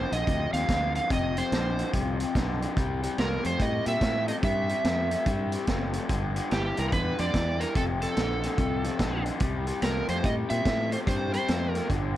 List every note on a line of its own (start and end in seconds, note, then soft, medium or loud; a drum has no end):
0.00 0.14 C5 medium
0.11 0.23 A#1 medium
0.11 0.25 F2 medium
0.11 0.25 D3 medium
0.11 0.53 D#5 loud
0.11 closed hi-hat medium
0.27 0.46 D2 medium
0.27 0.50 F2 medium
0.27 0.51 C3 medium
0.27 kick loud
0.27 closed hi-hat medium
0.53 0.64 D#2 medium
0.53 0.67 F2 medium
0.53 0.68 C3 medium
0.53 0.95 F5 loud
0.53 snare soft
0.53 closed hi-hat medium
0.69 0.98 D2 medium
0.69 0.92 F2 medium
0.69 0.92 D3 loud
0.69 kick medium
0.69 snare loud
0.69 closed hi-hat medium
0.95 1.09 F2 medium
0.95 1.09 D3 medium
0.95 1.11 F5 medium
0.95 closed hi-hat medium
1.10 1.40 F1 medium
1.10 1.34 F2 medium
1.10 1.34 C3 medium
1.10 1.38 D#5 loud
1.10 kick loud
1.10 snare soft
1.10 closed hi-hat medium
1.37 1.50 F2 medium
1.37 1.51 C3 medium
1.37 1.90 C5 medium
1.37 closed hi-hat medium
1.52 1.82 A#1 medium
1.52 1.76 F2 medium
1.52 1.76 D3 medium
1.52 snare loud
1.52 closed hi-hat medium
1.78 1.92 F2 medium
1.78 1.92 D3 medium
1.78 closed hi-hat medium
1.93 2.23 C2 medium
1.93 2.17 F2 medium
1.93 2.17 C3 medium
1.93 kick loud
1.93 closed hi-hat medium
2.20 2.33 F2 medium
2.20 2.34 C3 medium
2.20 closed hi-hat medium
2.35 2.65 B1 medium
2.35 2.59 F2 medium
2.35 2.59 D3 medium
2.35 kick medium
2.35 snare loud
2.35 closed hi-hat medium
2.61 2.75 F2 medium
2.61 2.75 D3 medium
2.61 closed hi-hat medium
2.76 3.06 C2 medium
2.76 3.00 C3 medium
2.76 3.00 G3 medium
2.76 kick loud
2.76 closed hi-hat medium
3.02 3.16 C3 medium
3.02 3.16 G3 medium
3.02 closed hi-hat medium
3.18 3.37 C2 medium
3.18 3.41 C3 medium
3.18 3.42 A3 medium
3.18 3.43 A#4 medium
3.18 snare loud
3.18 closed hi-hat medium
3.43 3.56 F2 medium
3.43 3.57 C3 medium
3.43 3.58 A3 medium
3.43 3.61 C5 medium
3.43 closed hi-hat medium
3.59 3.78 A2 medium
3.59 3.83 C3 medium
3.59 3.83 G3 medium
3.59 3.88 D#5 loud
3.59 kick loud
3.59 closed hi-hat medium
3.85 3.97 A#2 medium
3.85 3.99 C3 medium
3.85 4.00 G3 medium
3.85 4.28 E5 loud
3.85 closed hi-hat medium
4.01 4.31 A2 medium
4.01 4.25 C3 medium
4.01 4.25 A3 medium
4.01 kick medium
4.01 snare loud
4.01 closed hi-hat medium
4.28 4.41 C3 medium
4.28 4.41 A3 medium
4.28 4.34 D#5 loud
4.28 closed hi-hat medium
4.43 4.73 G2 medium
4.43 4.66 C3 medium
4.43 4.67 G3 medium
4.43 5.64 E5 medium
4.43 kick loud
4.43 closed hi-hat medium
4.69 4.83 C3 medium
4.69 4.83 G3 medium
4.69 closed hi-hat medium
4.84 5.14 F2 medium
4.84 5.08 C3 medium
4.84 5.08 A3 medium
4.84 snare loud
4.84 closed hi-hat medium
5.11 5.24 C3 medium
5.11 5.25 A3 medium
5.11 closed hi-hat medium
5.26 5.56 G2 medium
5.26 5.50 C3 medium
5.26 5.50 G3 medium
5.26 kick loud
5.26 closed hi-hat medium
5.52 5.66 C3 medium
5.52 5.66 G3 medium
5.52 closed hi-hat medium
5.67 5.97 F#1 medium
5.67 5.91 C3 medium
5.67 5.91 A3 medium
5.67 kick medium
5.67 snare loud
5.67 closed hi-hat medium
5.93 6.07 C3 medium
5.93 6.08 A3 medium
5.93 closed hi-hat medium
6.08 6.39 G1 medium
6.08 6.32 G2 medium
6.08 6.33 D3 medium
6.08 kick loud
6.08 closed hi-hat medium
6.34 6.48 G2 medium
6.34 6.49 D3 medium
6.34 closed hi-hat medium
6.50 6.70 G1 medium
6.50 6.74 G2 medium
6.50 6.74 E3 medium
6.50 6.79 G4 medium
6.50 snare loud
6.50 closed hi-hat medium
6.77 6.89 C2 medium
6.77 6.90 G2 medium
6.77 6.91 E3 medium
6.77 6.88 A#4 medium
6.77 closed hi-hat medium
6.89 7.11 E2 medium
6.89 7.15 G2 medium
6.89 7.16 D3 medium
6.89 6.92 A#4 medium
6.89 7.20 B4 loud
6.89 kick loud
6.89 closed hi-hat medium
7.17 7.30 F2 medium
7.17 7.31 G2 medium
7.17 7.32 D3 medium
7.17 7.62 D5 loud
7.17 snare soft
7.17 closed hi-hat medium
7.33 7.64 E2 medium
7.33 7.57 G2 medium
7.33 7.57 E3 loud
7.33 kick medium
7.33 snare loud
7.33 closed hi-hat medium
7.60 7.74 G2 medium
7.60 7.74 E3 medium
7.60 7.76 A#4 medium
7.60 closed hi-hat medium
7.75 8.05 F1 medium
7.75 7.98 F2 medium
7.75 7.99 C3 medium
7.75 7.83 A4 medium
7.75 kick loud
7.75 snare soft
7.75 closed hi-hat medium
8.01 8.15 F2 medium
8.01 8.15 C3 medium
8.01 9.23 A4 medium
8.01 closed hi-hat medium
8.16 8.47 A#1 medium
8.16 8.40 F2 medium
8.16 8.40 D3 medium
8.16 snare loud
8.16 closed hi-hat medium
8.42 8.56 F2 medium
8.42 8.57 D3 medium
8.42 snare soft
8.42 closed hi-hat medium
8.58 8.88 C2 medium
8.58 8.81 F2 medium
8.58 8.82 C3 medium
8.58 kick loud
8.58 closed hi-hat medium
8.84 8.98 F2 medium
8.84 8.98 C3 medium
8.84 closed hi-hat medium
8.99 9.29 A#1 medium
8.99 9.23 F2 medium
8.99 9.23 D3 medium
8.99 kick medium
8.99 snare loud
8.99 closed hi-hat medium
9.25 9.39 F2 medium
9.25 9.39 D3 medium
9.25 closed hi-hat medium
9.40 9.71 C2 medium
9.40 9.65 C3 medium
9.40 9.65 G3 medium
9.40 kick loud
9.40 closed hi-hat medium
9.67 9.80 C3 medium
9.67 9.81 G3 medium
9.67 closed hi-hat medium
9.82 10.01 C2 medium
9.82 10.06 C3 medium
9.82 10.06 A3 medium
9.82 10.09 A#4 medium
9.82 snare loud
9.82 closed hi-hat medium
10.08 10.20 F2 medium
10.08 10.22 C3 medium
10.08 10.23 A3 medium
10.08 10.25 C5 medium
10.08 closed hi-hat medium
10.23 10.43 A2 medium
10.23 10.47 C3 medium
10.23 10.47 G3 loud
10.23 10.32 D#5 loud
10.23 kick loud
10.23 closed hi-hat medium
10.49 10.62 A#2 medium
10.49 10.63 C3 medium
10.49 10.64 G3 medium
10.49 10.89 E5 loud
10.49 closed hi-hat medium
10.65 10.95 A2 medium
10.65 10.89 C3 medium
10.65 10.89 A3 loud
10.65 kick medium
10.65 snare loud
10.65 closed hi-hat medium
10.92 11.06 C3 medium
10.92 11.06 A3 medium
10.92 10.98 C5 medium
10.92 closed hi-hat medium
11.07 11.37 G2 medium
11.07 11.31 C3 medium
11.07 11.31 G3 medium
11.07 11.32 C5 loud
11.07 kick loud
11.07 snare soft
11.07 closed hi-hat medium
11.33 11.47 C3 medium
11.33 11.47 G3 medium
11.33 11.71 C5 medium
11.33 closed hi-hat medium
11.48 11.79 F2 medium
11.48 11.72 C3 medium
11.48 11.72 A3 medium
11.48 snare loud
11.48 closed hi-hat medium
11.71 11.87 A#4 medium
11.75 11.89 C3 medium
11.75 11.89 A3 medium
11.75 snare soft
11.75 closed hi-hat medium
11.90 12.17 G1 medium
11.90 12.14 G2 medium
11.90 12.14 D3 medium
11.90 kick loud
11.90 closed hi-hat medium